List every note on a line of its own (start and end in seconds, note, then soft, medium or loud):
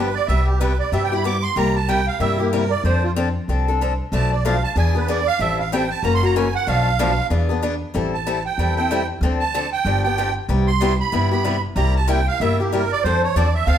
0.00 0.16 G1 medium
0.00 0.15 B4 medium
0.15 0.28 D5 loud
0.27 0.80 C2 medium
0.27 0.49 C3 medium
0.27 0.49 G3 medium
0.27 0.49 B3 medium
0.27 0.49 E4 medium
0.27 0.49 G4 medium
0.27 0.46 E5 medium
0.45 0.59 G4 medium
0.59 0.71 C3 medium
0.59 0.71 G3 medium
0.59 0.72 B3 loud
0.59 0.72 E4 medium
0.59 0.72 G4 medium
0.59 0.78 B4 medium
0.79 0.92 D5 medium
0.92 1.43 G2 medium
0.92 1.11 C3 medium
0.92 1.11 G3 medium
0.92 1.11 B3 medium
0.92 1.11 E4 medium
0.92 1.11 G4 medium
0.92 1.03 E5 medium
1.04 1.14 G5 medium
1.12 1.24 B3 soft
1.12 1.24 E4 medium
1.12 1.24 G4 medium
1.12 1.25 B5 medium
1.24 1.35 C3 medium
1.24 1.35 G3 medium
1.24 1.36 B3 medium
1.24 1.36 E4 medium
1.24 1.36 G4 medium
1.24 1.44 D6 medium
1.43 1.56 C6 loud
1.56 2.07 C2 medium
1.56 1.76 C3 medium
1.56 1.76 G3 medium
1.56 1.77 A#3 medium
1.56 1.77 E4 medium
1.56 1.77 G4 medium
1.56 1.75 A#5 medium
1.76 1.88 A5 medium
1.88 1.99 C3 medium
1.88 1.99 G3 medium
1.88 2.00 A#3 medium
1.88 2.00 E4 medium
1.88 2.00 G4 medium
1.88 2.07 G5 medium
2.07 2.20 F5 medium
2.20 2.71 G2 medium
2.20 2.39 C3 medium
2.20 2.39 G3 medium
2.20 2.39 A#3 medium
2.20 2.39 E4 medium
2.20 2.38 G4 medium
2.20 2.39 E5 medium
2.39 2.52 A#3 soft
2.39 2.52 E4 soft
2.39 2.51 G4 medium
2.39 2.52 G4 medium
2.53 2.63 C3 medium
2.53 2.63 G3 medium
2.53 2.63 A#3 medium
2.53 2.64 E4 medium
2.53 2.64 G4 medium
2.53 2.71 A#4 medium
2.71 2.83 D5 loud
2.84 3.35 F2 medium
2.84 3.04 F3 medium
2.84 3.04 C4 medium
2.84 3.05 D4 medium
2.84 3.05 A4 medium
2.84 3.03 C5 medium
3.03 3.11 F4 medium
3.16 3.27 F3 loud
3.16 3.27 C4 loud
3.16 3.27 D4 medium
3.16 3.28 A4 medium
3.48 3.99 C2 medium
3.48 3.67 F3 medium
3.48 3.67 C4 medium
3.48 3.67 D4 medium
3.48 3.67 A4 medium
3.68 3.81 C4 medium
3.68 3.81 D4 medium
3.68 3.80 A4 medium
3.81 3.92 F3 medium
3.81 3.92 C4 medium
3.81 3.92 D4 medium
3.81 3.92 A4 medium
4.12 4.63 B1 medium
4.12 4.32 B2 medium
4.12 4.33 F3 medium
4.12 4.33 A3 medium
4.12 4.33 D4 medium
4.12 4.33 A4 medium
4.12 4.31 A5 medium
4.32 4.44 D5 medium
4.45 4.55 B2 medium
4.45 4.55 F3 loud
4.45 4.56 A3 medium
4.45 4.56 D4 loud
4.45 4.56 A4 loud
4.45 4.63 F5 medium
4.64 4.76 A5 loud
4.76 5.27 E2 medium
4.76 4.94 E3 medium
4.76 4.94 B3 medium
4.76 4.95 D4 medium
4.76 4.93 G#4 medium
4.76 4.95 G#5 medium
4.95 5.07 B3 soft
4.95 5.08 D4 medium
4.95 5.07 G#4 medium
4.95 5.08 B4 medium
5.08 5.19 E3 medium
5.08 5.19 B3 medium
5.08 5.19 D4 medium
5.08 5.19 G#4 loud
5.08 5.27 D5 medium
5.27 5.40 F5 loud
5.39 5.90 A1 medium
5.39 5.60 E3 medium
5.39 5.60 G3 medium
5.39 5.60 C4 medium
5.39 5.60 E4 medium
5.39 5.60 A4 medium
5.39 5.58 E5 medium
5.59 5.71 F5 medium
5.72 5.83 E3 medium
5.72 5.83 G3 loud
5.72 5.83 C4 loud
5.72 5.83 E4 loud
5.72 5.83 A4 medium
5.72 5.90 G5 medium
5.90 6.03 A5 medium
6.03 6.54 F#1 medium
6.03 6.22 C#3 medium
6.03 6.22 E3 medium
6.03 6.22 A#3 medium
6.03 6.22 C#4 medium
6.03 6.22 F#4 medium
6.03 6.14 A#5 medium
6.14 6.25 C6 loud
6.23 6.35 A#3 soft
6.23 6.35 C#4 medium
6.23 6.35 F#4 medium
6.23 6.35 A#5 medium
6.36 6.46 C#3 medium
6.36 6.46 E3 loud
6.36 6.47 A#3 medium
6.36 6.47 C#4 medium
6.36 6.47 F#4 medium
6.36 6.54 G#5 medium
6.55 6.67 F#5 loud
6.67 7.18 B1 medium
6.67 6.87 B2 medium
6.67 6.87 F3 medium
6.67 6.87 A3 medium
6.67 6.88 D4 medium
6.67 6.88 A4 medium
6.67 7.27 F5 loud
6.99 7.10 B2 loud
6.99 7.10 F3 loud
6.99 7.10 A3 loud
6.99 7.10 D4 loud
6.99 7.10 A4 loud
7.30 7.81 E2 medium
7.30 7.49 E3 medium
7.30 7.49 B3 medium
7.30 7.49 D4 medium
7.30 7.48 G#4 medium
7.49 7.62 B3 medium
7.49 7.62 D4 medium
7.49 7.62 G#4 medium
7.62 7.73 E3 medium
7.62 7.73 B3 medium
7.62 7.74 D4 loud
7.62 7.74 G#4 loud
7.94 8.46 A1 medium
7.94 8.14 E3 medium
7.94 8.14 G3 medium
7.94 8.14 C4 medium
7.94 8.15 E4 medium
7.94 8.15 A4 medium
8.14 8.43 A5 medium
8.27 8.37 E3 medium
8.27 8.37 G3 medium
8.27 8.37 C4 loud
8.27 8.38 E4 medium
8.27 8.38 A4 loud
8.46 8.75 G5 medium
8.58 9.09 E2 medium
8.58 8.77 E3 medium
8.58 8.77 G3 medium
8.58 8.77 C4 medium
8.58 8.77 E4 medium
8.58 8.76 A4 medium
8.77 8.90 C4 soft
8.77 8.90 E4 medium
8.77 8.89 A4 medium
8.77 9.07 G5 medium
8.91 9.01 E3 medium
8.91 9.01 G3 medium
8.91 9.02 C4 medium
8.91 9.02 E4 medium
8.91 9.02 A4 medium
9.21 9.72 D2 loud
9.21 9.42 D3 medium
9.21 9.42 F3 medium
9.21 9.42 C4 medium
9.21 9.43 D4 medium
9.21 9.43 A4 medium
9.40 9.70 A5 medium
9.54 9.65 D3 medium
9.54 9.65 F3 medium
9.54 9.65 C4 loud
9.54 9.65 D4 medium
9.54 9.65 A4 loud
9.72 10.02 G5 medium
9.85 10.36 G1 medium
9.85 10.04 D3 medium
9.85 10.04 F3 medium
9.85 10.04 B3 medium
9.85 10.05 D4 medium
9.85 10.03 G4 medium
10.03 10.17 B3 soft
10.03 10.18 D4 soft
10.03 10.17 G4 medium
10.03 10.33 G5 medium
10.18 10.28 D3 medium
10.18 10.28 F3 medium
10.18 10.29 B3 medium
10.18 10.29 D4 medium
10.18 10.29 G4 medium
10.48 11.00 C2 medium
10.48 10.69 C3 medium
10.48 10.69 G3 medium
10.48 10.69 B3 medium
10.48 10.70 E4 medium
10.48 10.69 G4 medium
10.67 10.97 C6 loud
10.81 10.92 C3 medium
10.81 10.92 G3 loud
10.81 10.92 B3 loud
10.81 10.92 E4 loud
10.81 10.92 G4 loud
11.00 11.30 B5 medium
11.12 11.64 G1 medium
11.12 11.31 C3 medium
11.12 11.31 G3 medium
11.12 11.31 B3 medium
11.12 11.31 E4 medium
11.12 11.30 G4 medium
11.31 11.44 B3 soft
11.31 11.44 E4 medium
11.31 11.44 G4 medium
11.31 11.62 B5 medium
11.44 11.55 C3 medium
11.44 11.55 G3 medium
11.44 11.55 B3 loud
11.44 11.56 E4 medium
11.44 11.56 G4 medium
11.76 12.27 C2 loud
11.76 11.96 C3 medium
11.76 11.96 G3 medium
11.76 11.96 A#3 medium
11.76 11.96 E4 medium
11.76 11.97 G4 medium
11.76 11.95 A#5 medium
11.96 12.08 A5 medium
12.08 12.19 C3 medium
12.08 12.19 G3 loud
12.08 12.19 A#3 medium
12.08 12.19 E4 loud
12.08 12.19 G4 loud
12.08 12.27 G5 medium
12.28 12.40 F5 loud
12.40 12.91 G1 medium
12.40 12.59 C3 medium
12.40 12.59 G3 medium
12.40 12.59 A#3 medium
12.40 12.59 E4 medium
12.40 12.59 G4 medium
12.40 12.59 E5 medium
12.60 12.72 A#3 soft
12.60 12.72 E4 soft
12.60 12.72 G4 medium
12.72 12.83 C3 medium
12.72 12.83 G3 medium
12.72 12.83 A#3 medium
12.72 12.83 E4 medium
12.72 12.83 G4 medium
12.72 12.91 A#4 medium
12.92 13.04 D5 loud
13.04 13.29 F2 medium
13.04 13.24 F3 medium
13.04 13.25 C4 medium
13.04 13.25 D4 medium
13.04 13.25 A4 medium
13.04 13.22 C5 medium
13.24 13.36 C#5 medium
13.36 13.63 E2 medium
13.36 13.47 F3 medium
13.36 13.47 C4 medium
13.36 13.47 D4 medium
13.36 13.47 A4 loud
13.36 13.54 D5 medium
13.54 13.67 E5 medium
13.67 13.78 D2 medium
13.67 13.78 F3 medium
13.67 13.78 C4 medium
13.67 13.78 D4 medium
13.67 13.78 A4 medium
13.67 13.78 F5 loud